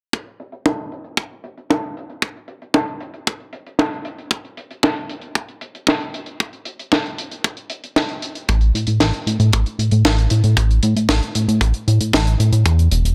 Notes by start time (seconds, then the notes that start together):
0.13 kick, closed hi-hat
0.26 closed hi-hat
0.40 closed hi-hat
0.52 closed hi-hat
0.66 kick, snare
0.79 closed hi-hat
0.92 closed hi-hat
1.04 closed hi-hat
1.17 kick, closed hi-hat
1.31 closed hi-hat
1.44 closed hi-hat
1.58 closed hi-hat
1.70 kick, snare
1.83 closed hi-hat
1.97 closed hi-hat
2.10 closed hi-hat
2.22 kick, closed hi-hat
2.37 closed hi-hat
2.48 closed hi-hat
2.62 closed hi-hat
2.74 kick, snare
2.88 closed hi-hat
3.00 closed hi-hat
3.14 closed hi-hat
3.27 kick, closed hi-hat
3.40 closed hi-hat
3.53 closed hi-hat
3.67 closed hi-hat
3.79 kick, snare
3.93 closed hi-hat
4.05 closed hi-hat
4.18 closed hi-hat
4.31 kick, closed hi-hat
4.45 closed hi-hat
4.57 closed hi-hat
4.71 closed hi-hat
4.83 kick, snare
4.96 closed hi-hat
5.09 closed hi-hat
5.21 closed hi-hat
5.35 kick, closed hi-hat
5.49 closed hi-hat
5.61 closed hi-hat
5.75 closed hi-hat
5.87 kick, snare
6.00 closed hi-hat
6.14 closed hi-hat
6.26 closed hi-hat
6.40 kick, closed hi-hat
6.53 closed hi-hat
6.65 closed hi-hat
6.79 closed hi-hat
6.92 kick, snare, closed hi-hat
7.06 closed hi-hat
7.18 closed hi-hat
7.31 closed hi-hat
7.44 kick, closed hi-hat
7.57 closed hi-hat
7.70 closed hi-hat
7.84 closed hi-hat
7.96 kick, snare, closed hi-hat
8.09 closed hi-hat
8.22 closed hi-hat
8.35 closed hi-hat
8.48 A1, kick, closed hi-hat
8.61 closed hi-hat
8.75 A2, closed hi-hat
8.87 A2, closed hi-hat
9.00 A1, kick, snare, closed hi-hat
9.13 closed hi-hat
9.27 A2, closed hi-hat
9.40 A2, closed hi-hat
9.53 A1, kick, closed hi-hat
9.66 closed hi-hat
9.79 A2, closed hi-hat
9.91 A2, closed hi-hat
10.05 A1, kick, snare, closed hi-hat
10.18 closed hi-hat
10.30 A2, closed hi-hat
10.44 A2, closed hi-hat
10.57 A1, kick, closed hi-hat
10.71 closed hi-hat
10.83 A2, closed hi-hat
10.96 A2, closed hi-hat
11.09 A1, kick, snare, closed hi-hat
11.23 closed hi-hat
11.35 A2, closed hi-hat
11.48 A2, closed hi-hat
11.61 A1, kick, closed hi-hat
11.74 closed hi-hat
11.88 A2, closed hi-hat
12.01 A2, closed hi-hat
12.13 A1, kick, snare, closed hi-hat
12.27 closed hi-hat
12.40 A2, closed hi-hat
12.53 A2, closed hi-hat
12.66 E2, kick, closed hi-hat
12.79 closed hi-hat
12.91 E1, closed hi-hat
13.05 E1, closed hi-hat